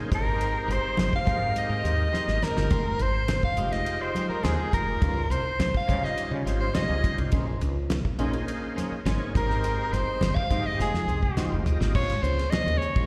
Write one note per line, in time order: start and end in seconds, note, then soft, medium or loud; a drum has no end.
0.00 0.10 D#4 medium
0.00 0.11 G#4 medium
0.00 0.11 C5 medium
0.10 0.56 G#1 medium
0.10 1.20 G#3 medium
0.10 1.20 C4 medium
0.10 1.20 D#4 medium
0.10 1.20 G4 medium
0.10 0.72 A#4 medium
0.10 1.20 C5 medium
0.10 muted clean electric guitar stroke soft
0.10 kick medium
0.10 hi-hat pedal medium
0.10 ride medium
0.10 muted conga soft
0.15 0.74 A#4 medium
0.25 muted clean electric guitar stroke soft
0.38 0.54 D#4 medium
0.38 0.53 G4 medium
0.38 0.52 C5 medium
0.38 hi-hat pedal medium
0.38 ride medium
0.38 muted conga soft
0.53 0.67 G4 soft
0.53 0.68 C5 soft
0.68 0.80 G1 medium
0.68 1.13 C5 medium
0.68 muted clean electric guitar stroke soft
0.68 hi-hat pedal medium
0.68 ride medium
0.73 1.14 C5 medium
0.96 1.09 G1 medium
0.96 muted clean electric guitar stroke soft
0.96 snare medium
0.96 hi-hat pedal medium
0.96 ride medium
0.96 high conga medium
1.10 1.53 F5 medium
1.10 muted clean electric guitar stroke soft
1.10 kick medium
1.16 1.54 F5 medium
1.24 1.49 G#2 medium
1.24 2.08 G#3 medium
1.24 2.09 C4 medium
1.24 1.40 D#4 medium
1.24 2.09 D#4 medium
1.24 1.39 G4 medium
1.24 2.09 G4 medium
1.24 1.38 C5 medium
1.24 kick medium
1.24 hi-hat pedal medium
1.24 ride medium
1.24 high conga medium
1.28 2.09 A#4 medium
1.39 muted clean electric guitar stroke soft
1.56 2.46 D#5 medium
1.56 2.45 D#5 medium
1.56 hi-hat pedal medium
1.56 ride medium
1.56 muted conga soft
1.68 1.81 G#2 medium
1.68 muted clean electric guitar stroke soft
1.82 2.07 D#2 medium
1.82 1.98 D#4 medium
1.82 1.97 G4 medium
1.82 1.96 C5 medium
1.82 hi-hat pedal medium
1.82 ride soft
1.82 muted conga soft
1.97 muted clean electric guitar stroke soft
2.12 2.40 G#3 medium
2.12 2.40 C4 medium
2.12 2.30 D#4 medium
2.12 2.40 D#4 medium
2.12 2.30 G4 medium
2.12 2.41 G4 medium
2.12 2.41 A#4 medium
2.12 2.31 C5 medium
2.12 snare medium
2.12 hi-hat pedal medium
2.12 high conga soft
2.28 2.39 G#1 medium
2.28 snare soft
2.28 high conga medium
2.42 2.71 G#3 medium
2.42 2.71 C4 medium
2.42 2.71 D#4 medium
2.42 2.71 G4 medium
2.42 2.71 A#4 medium
2.42 3.04 A#4 medium
2.42 muted clean electric guitar stroke soft
2.42 snare medium
2.42 hi-hat pedal medium
2.42 low conga medium
2.57 2.68 G1 medium
2.57 snare medium
2.57 low conga medium
2.70 2.93 F1 medium
2.70 2.85 G#3 medium
2.70 2.84 D#4 medium
2.70 2.84 G4 medium
2.70 2.83 C5 medium
2.70 kick loud
2.70 hi-hat pedal medium
2.70 ride medium
2.70 muted conga soft
2.84 2.98 D#4 soft
2.84 2.98 G4 soft
2.84 2.98 C5 soft
2.99 3.43 G#1 medium
2.99 3.44 C5 medium
2.99 3.45 C5 medium
2.99 muted clean electric guitar stroke soft
2.99 hi-hat pedal medium
2.99 ride medium
3.28 muted clean electric guitar stroke soft
3.28 snare loud
3.28 hi-hat pedal medium
3.28 ride medium
3.28 high conga medium
3.42 3.54 F1 medium
3.42 3.74 F5 medium
3.42 3.77 F5 medium
3.42 muted clean electric guitar stroke soft
3.42 kick medium
3.56 3.80 F1 medium
3.56 4.38 G#3 medium
3.56 3.72 G#3 medium
3.56 4.39 D#4 medium
3.56 3.72 D#4 medium
3.56 4.39 F4 medium
3.56 4.39 G4 medium
3.56 3.72 G4 medium
3.56 4.39 C5 medium
3.56 3.72 C5 medium
3.56 hi-hat pedal medium
3.56 ride medium
3.72 4.03 D#5 medium
3.72 4.05 D#5 medium
3.72 muted clean electric guitar stroke soft
3.72 snare soft
3.72 ride medium
3.86 hi-hat pedal medium
3.86 ride medium
3.86 muted conga soft
4.01 4.27 C5 medium
4.01 4.28 C5 medium
4.01 muted clean electric guitar stroke soft
4.15 4.30 G#3 medium
4.15 4.29 D#4 medium
4.15 4.28 G4 medium
4.15 4.28 C5 medium
4.15 hi-hat pedal medium
4.15 ride medium
4.15 muted conga soft
4.15 high conga medium
4.27 4.45 A#4 medium
4.27 4.31 C5 medium
4.27 4.34 C5 soft
4.27 muted clean electric guitar stroke soft
4.27 muted fretless electric bass stroke soft
4.33 4.48 A#4 medium
4.43 4.56 D#2 medium
4.43 4.61 G#3 medium
4.43 4.71 G#3 medium
4.43 4.61 D#4 medium
4.43 4.71 D#4 medium
4.43 4.71 F4 medium
4.43 4.61 G4 medium
4.43 4.71 G4 medium
4.43 4.73 G#4 medium
4.43 4.61 C5 medium
4.43 4.72 C5 medium
4.43 snare loud
4.43 hi-hat pedal medium
4.43 ride medium
4.43 high conga medium
4.47 4.74 G#4 medium
4.72 4.95 F1 medium
4.72 5.01 G#3 medium
4.72 5.02 D#4 medium
4.72 5.02 F4 medium
4.72 5.02 G4 medium
4.72 5.33 A#4 medium
4.72 5.02 C5 medium
4.72 muted clean electric guitar stroke soft
4.72 kick medium
4.72 hi-hat pedal medium
4.72 ride medium
4.72 muted conga soft
4.86 muted clean electric guitar stroke soft
5.01 5.24 C#2 medium
5.01 5.16 G3 medium
5.01 5.14 D#4 medium
5.01 5.14 F4 medium
5.01 5.14 C5 medium
5.01 kick loud
5.01 hi-hat pedal medium
5.01 ride medium
5.15 5.28 D#4 soft
5.15 5.27 F4 soft
5.15 5.28 C5 soft
5.28 5.42 C2 medium
5.28 5.74 C5 medium
5.28 5.75 C5 medium
5.28 muted clean electric guitar stroke soft
5.28 hi-hat pedal medium
5.28 ride medium
5.45 muted fretless electric bass stroke soft
5.58 5.71 C2 medium
5.58 muted clean electric guitar stroke soft
5.58 snare loud
5.58 hi-hat pedal medium
5.58 ride medium
5.58 high conga medium
5.74 6.05 F5 medium
5.74 6.06 F5 medium
5.74 muted fretless electric bass stroke soft
5.74 muted clean electric guitar stroke soft
5.74 kick medium
5.87 6.11 C#3 medium
5.87 6.69 G3 medium
5.87 6.03 G3 medium
5.87 6.69 C#4 medium
5.87 6.69 D#4 medium
5.87 6.02 D#4 medium
5.87 6.70 F4 medium
5.87 6.02 F4 medium
5.87 6.70 C5 medium
5.87 6.01 C5 medium
5.87 kick medium
5.87 hi-hat pedal medium
5.87 ride medium
5.87 high conga medium
6.03 6.32 D#5 medium
6.03 muted clean electric guitar stroke soft
6.03 snare soft
6.17 hi-hat pedal medium
6.17 ride medium
6.17 muted conga soft
6.31 6.43 C#3 medium
6.31 muted clean electric guitar stroke soft
6.46 6.69 G#1 medium
6.46 6.61 G3 medium
6.46 6.60 D#4 medium
6.46 6.60 F4 medium
6.46 6.59 C5 medium
6.46 snare soft
6.46 hi-hat pedal medium
6.46 ride medium
6.46 muted conga soft
6.60 6.77 C5 medium
6.60 6.76 C5 medium
6.60 muted clean electric guitar stroke soft
6.74 7.02 G3 medium
6.74 6.92 G3 medium
6.74 7.02 C#4 medium
6.74 6.92 D#4 medium
6.74 7.02 D#4 medium
6.74 6.93 F4 medium
6.74 7.03 F4 medium
6.74 7.03 G#4 medium
6.74 6.93 C5 medium
6.74 7.18 D#5 medium
6.74 7.19 D#5 medium
6.74 snare loud
6.74 hi-hat pedal medium
6.74 ride medium
6.74 high conga medium
6.74 low conga medium
6.90 7.01 C#2 medium
7.03 7.33 G3 medium
7.03 7.32 C#4 medium
7.03 7.33 D#4 medium
7.03 7.33 F4 medium
7.03 7.33 C5 medium
7.03 muted clean electric guitar stroke soft
7.03 kick medium
7.03 hi-hat pedal medium
7.03 ride medium
7.03 muted conga soft
7.18 7.29 C2 medium
7.18 muted clean electric guitar stroke soft
7.18 ride medium
7.32 7.55 A#1 medium
7.32 7.47 C#4 medium
7.32 7.46 D#4 medium
7.32 7.46 G#4 medium
7.32 7.45 C5 medium
7.32 kick loud
7.32 hi-hat pedal medium
7.32 ride medium
7.32 muted conga soft
7.46 7.61 D#4 soft
7.46 7.61 G#4 medium
7.46 7.61 C5 medium
7.61 8.05 C#2 medium
7.61 muted clean electric guitar stroke soft
7.61 hi-hat pedal medium
7.61 ride medium
7.90 muted clean electric guitar stroke soft
7.90 snare loud
7.90 hi-hat pedal medium
7.90 ride medium
7.90 high conga medium
8.05 8.16 A#1 medium
8.05 muted clean electric guitar stroke soft
8.05 kick medium
8.18 8.41 A#1 medium
8.18 9.00 A#3 medium
8.18 9.01 C#4 medium
8.18 8.34 C#4 medium
8.18 9.01 D#4 medium
8.18 8.33 D#4 medium
8.18 9.01 G#4 medium
8.18 8.32 G#4 medium
8.18 9.01 C5 loud
8.18 8.32 C5 medium
8.18 hi-hat pedal medium
8.18 ride medium
8.33 muted clean electric guitar stroke soft
8.33 ride medium
8.48 hi-hat pedal medium
8.48 ride medium
8.48 muted conga soft
8.62 muted clean electric guitar stroke soft
8.75 8.91 C#4 medium
8.75 8.91 D#4 medium
8.75 8.91 G#4 medium
8.75 8.91 C5 medium
8.75 snare soft
8.75 hi-hat pedal medium
8.75 ride soft
8.75 muted conga soft
8.75 high conga medium
8.92 muted fretless electric bass stroke soft
8.92 muted clean electric guitar stroke soft
9.05 9.17 G#1 medium
9.05 9.33 A#3 medium
9.05 9.23 C#4 medium
9.05 9.33 C#4 medium
9.05 9.33 D#4 medium
9.05 9.24 D#4 medium
9.05 9.24 G#4 medium
9.05 9.33 G#4 medium
9.05 9.24 C5 medium
9.05 9.34 C#5 medium
9.05 snare loud
9.05 hi-hat pedal medium
9.05 ride medium
9.05 high conga medium
9.34 9.80 G#1 medium
9.34 10.43 G#3 medium
9.34 10.44 C4 medium
9.34 10.43 D#4 medium
9.34 10.44 G4 medium
9.34 9.95 A#4 medium
9.34 10.44 C5 medium
9.34 muted clean electric guitar stroke soft
9.34 kick medium
9.34 hi-hat pedal medium
9.34 ride medium
9.34 muted conga soft
9.50 snare soft
9.63 9.78 D#4 medium
9.63 9.78 G4 medium
9.63 9.76 C5 medium
9.63 hi-hat pedal medium
9.63 ride medium
9.63 muted conga soft
9.77 9.91 G4 soft
9.77 9.91 C5 soft
9.92 10.04 G1 medium
9.92 10.37 C5 medium
9.92 10.40 C5 medium
9.92 muted clean electric guitar stroke soft
9.92 snare soft
9.92 hi-hat pedal medium
9.92 ride medium
10.07 muted fretless electric bass stroke soft
10.21 10.32 G1 medium
10.21 snare medium
10.21 hi-hat pedal medium
10.21 ride medium
10.21 high conga medium
10.21 low conga medium
10.35 10.68 F5 medium
10.35 muted clean electric guitar stroke soft
10.35 muted fretless electric bass stroke soft
10.35 kick medium
10.50 10.62 G#2 medium
10.50 10.79 G#3 medium
10.50 10.80 C4 medium
10.50 10.65 D#4 medium
10.50 10.80 D#4 medium
10.50 10.64 G4 medium
10.50 10.80 G4 medium
10.50 10.64 C5 medium
10.50 10.80 D#5 medium
10.50 kick medium
10.50 hi-hat pedal medium
10.50 ride medium
10.50 high conga medium
10.65 10.80 D#5 medium
10.65 muted clean electric guitar stroke soft
10.78 10.91 F1 medium
10.78 10.93 G#3 medium
10.78 10.93 D#4 medium
10.78 10.93 G4 medium
10.78 11.63 G#4 medium
10.78 10.93 C5 medium
10.78 snare medium
10.78 hi-hat pedal medium
10.78 muted conga soft
10.94 11.05 F2 medium
10.94 muted clean electric guitar stroke soft
10.94 snare soft
11.07 11.30 C2 medium
11.07 11.22 G#3 soft
11.07 11.21 D#4 medium
11.07 11.22 G4 medium
11.07 11.21 C5 medium
11.07 hi-hat pedal medium
11.07 muted conga soft
11.22 muted clean electric guitar stroke soft
11.22 kick medium
11.36 11.64 G#3 medium
11.36 11.55 G#3 medium
11.36 11.64 D#4 medium
11.36 11.55 D#4 medium
11.36 11.64 F4 medium
11.36 11.64 G4 medium
11.36 11.55 G4 medium
11.36 11.55 C5 medium
11.36 11.65 C5 medium
11.36 muted fretless electric bass stroke soft
11.36 snare medium
11.36 hi-hat pedal medium
11.36 high conga medium
11.36 low conga medium
11.52 11.63 F1 medium
11.65 11.94 G#3 medium
11.65 11.95 D#4 medium
11.65 11.95 F4 medium
11.65 11.95 G4 medium
11.65 11.95 D#5 medium
11.65 muted clean electric guitar stroke soft
11.65 floor tom medium
11.65 hi-hat pedal medium
11.65 muted conga soft
11.80 11.91 G#1 medium
11.80 muted clean electric guitar stroke soft
11.80 snare medium
11.94 12.06 A#1 loud
11.94 13.06 C#3 medium
11.94 13.06 G#3 medium
11.94 12.12 G#3 medium
11.94 13.06 A#3 medium
11.94 12.13 C#4 medium
11.94 12.13 F4 medium
11.94 12.13 C5 medium
11.94 12.24 C#5 medium
11.94 kick medium
11.94 crash medium
11.94 muted conga soft
12.10 snare soft
12.10 ride medium
12.22 12.45 C#2 medium
12.22 12.52 C5 medium
12.22 hi-hat pedal medium
12.22 muted conga soft
12.38 12.51 C#4 soft
12.38 12.52 F4 soft
12.38 12.52 C5 medium
12.38 snare soft
12.38 ride medium
12.50 12.79 D#5 medium
12.50 muted clean electric guitar stroke soft
12.50 snare loud
12.50 ride medium
12.50 high conga medium
12.66 12.78 D#2 medium
12.66 muted clean electric guitar stroke soft
12.66 ride medium
12.78 13.06 C#5 medium
12.78 muted fretless electric bass stroke soft
12.78 hi-hat pedal medium
12.82 muted clean electric guitar stroke soft
12.96 13.06 A#1 medium
12.96 13.06 G#3 medium
12.96 13.06 C#4 medium
12.96 13.06 F4 medium
12.96 13.06 C5 medium
12.96 kick medium
12.96 ride medium